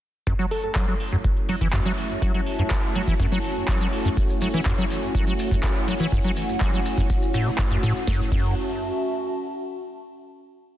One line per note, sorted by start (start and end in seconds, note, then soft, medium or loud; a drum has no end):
0.27 0.34 F#2 loud
0.27 8.03 A3 medium
0.27 8.06 C#4 medium
0.27 8.03 E4 medium
0.27 8.03 F#4 medium
0.27 8.03 C#5 medium
0.27 kick loud
0.27 closed hi-hat medium
0.39 0.46 F#3 loud
0.39 closed hi-hat soft
0.51 0.59 A4 medium
0.51 open hi-hat loud
0.63 0.71 A4 medium
0.63 closed hi-hat soft
0.75 0.86 F#3 medium
0.75 kick loud
0.75 clap loud
0.75 closed hi-hat medium
0.88 0.95 F#3 medium
0.88 8.07 F#4 medium
0.88 closed hi-hat soft
1.00 open hi-hat medium
1.12 1.16 F#2 medium
1.12 closed hi-hat soft
1.18 4.46 E5 medium
1.24 kick loud
1.24 closed hi-hat medium
1.37 closed hi-hat soft
1.49 1.56 F#3 medium
1.49 open hi-hat loud
1.61 1.68 E3 loud
1.61 kick medium
1.61 closed hi-hat soft
1.73 1.80 F#2 medium
1.73 kick loud
1.73 clap loud
1.73 closed hi-hat medium
1.83 1.92 F#3 loud
1.83 5.65 A5 medium
1.83 closed hi-hat soft
1.98 open hi-hat loud
2.10 closed hi-hat soft
2.22 2.32 F#3 medium
2.22 kick loud
2.22 closed hi-hat medium
2.34 2.41 F#3 medium
2.34 closed hi-hat soft
2.46 open hi-hat loud
2.59 2.63 F#2 medium
2.59 closed hi-hat soft
2.71 kick loud
2.71 clap loud
2.71 closed hi-hat medium
2.83 closed hi-hat soft
2.95 3.02 F#3 medium
2.95 open hi-hat loud
3.07 3.14 E3 loud
3.07 kick medium
3.07 closed hi-hat soft
3.20 3.26 F#2 loud
3.20 kick loud
3.20 closed hi-hat medium
3.32 3.39 F#3 loud
3.32 closed hi-hat soft
3.44 open hi-hat loud
3.56 closed hi-hat soft
3.68 3.79 F#3 medium
3.68 kick loud
3.68 clap loud
3.68 closed hi-hat medium
3.81 3.87 F#3 medium
3.81 closed hi-hat soft
3.93 open hi-hat loud
4.05 4.09 F#2 medium
4.05 closed hi-hat soft
4.17 kick loud
4.17 closed hi-hat medium
4.17 maracas soft
4.29 8.07 F#5 medium
4.29 closed hi-hat soft
4.29 maracas soft
4.41 4.48 F#3 medium
4.41 open hi-hat loud
4.41 maracas loud
4.54 4.61 E3 loud
4.54 closed hi-hat soft
4.54 maracas soft
4.66 4.73 F#2 loud
4.66 kick loud
4.66 clap loud
4.66 closed hi-hat medium
4.66 maracas soft
4.78 4.85 F#3 loud
4.78 closed hi-hat soft
4.90 open hi-hat loud
4.90 maracas loud
5.03 closed hi-hat soft
5.03 maracas soft
5.15 5.25 F#3 medium
5.15 kick loud
5.15 closed hi-hat medium
5.15 maracas medium
5.27 5.34 F#3 medium
5.27 closed hi-hat soft
5.27 maracas soft
5.39 open hi-hat loud
5.39 maracas loud
5.50 5.55 F#2 medium
5.50 8.07 G#5 medium
5.50 kick medium
5.50 closed hi-hat soft
5.50 maracas soft
5.63 kick loud
5.63 clap loud
5.63 closed hi-hat medium
5.63 maracas soft
5.75 closed hi-hat soft
5.75 maracas soft
5.88 5.95 F#3 medium
5.88 open hi-hat loud
5.88 maracas medium
6.00 6.07 E3 loud
6.00 closed hi-hat soft
6.00 maracas soft
6.12 6.19 F#2 loud
6.12 kick loud
6.12 closed hi-hat medium
6.12 maracas medium
6.24 6.31 F#3 loud
6.24 closed hi-hat soft
6.24 maracas soft
6.36 open hi-hat loud
6.36 maracas medium
6.49 closed hi-hat soft
6.49 maracas soft
6.61 6.71 F#3 medium
6.61 kick loud
6.61 clap loud
6.61 closed hi-hat medium
6.61 maracas medium
6.73 6.80 F#3 medium
6.73 closed hi-hat soft
6.73 maracas soft
6.85 open hi-hat loud
6.85 maracas loud
6.98 7.02 F#2 medium
6.98 kick medium
6.98 closed hi-hat soft
6.98 maracas soft
7.10 kick loud
7.10 closed hi-hat medium
7.10 maracas medium
7.22 closed hi-hat soft
7.22 maracas soft
7.34 7.48 A2 medium
7.34 open hi-hat loud
7.34 maracas loud
7.46 7.51 C#3 medium
7.46 closed hi-hat soft
7.46 maracas soft
7.58 7.63 F#2 medium
7.58 kick loud
7.58 clap loud
7.58 closed hi-hat medium
7.58 maracas medium
7.71 7.78 F#2 medium
7.71 closed hi-hat soft
7.71 maracas soft
7.83 7.93 A2 loud
7.83 open hi-hat loud
7.83 maracas loud
7.95 closed hi-hat soft
7.95 maracas soft
8.07 8.21 F#2 loud
8.07 9.99 C#4 medium
8.07 kick loud
8.07 snare medium
8.15 9.99 F#4 medium
8.22 9.99 E5 medium
8.29 8.55 F#2 medium
8.29 9.98 A5 medium
8.29 kick loud
8.29 crash medium